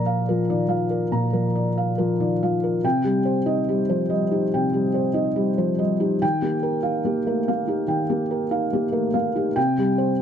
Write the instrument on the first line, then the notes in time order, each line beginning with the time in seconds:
felt piano
Already playing: A#2 F3 A#4 D5 A#5
0.06 F5
0.29 F3 A#4
0.50 D#3 D5
0.68 F3 F5
0.90 A#4
1.12 A#2 A#5
1.33 F3 A#4
1.55 D5
1.78 F5
1.98 F3 A#4
2.20 D#3 D5
2.43 F3 F5
2.63 A#4
2.84 C3 G5
3.04 G3 G4
3.25 C5
3.46 D#4 D#5
3.69 G3 G4
3.89 F3 C5
4.10 G3 D#5
4.31 D#4 G4
4.54 C3 G5
4.73 G3 G4
4.94 C5
5.14 D#4 D#5
5.36 G3 G4
5.58 F3 C5
5.79 G3 D#5
6.00 D#4 G4
6.22 D#3 G5
6.42 A#3 G4
6.63 A#4
6.83 D#4 F5
7.05 A#3 G4
7.27 A3 A#4
7.48 A#3 F5
7.67 D#4 G4
7.88 D#3 G5
8.10 A#3 G4
8.31 A#4
8.51 D#4 F5
8.73 A#3 G4
8.92 A3 A#4
9.14 A#3 F5
9.35 D#4 G4
9.56 C3 G5
9.78 G3 G4
9.98 C5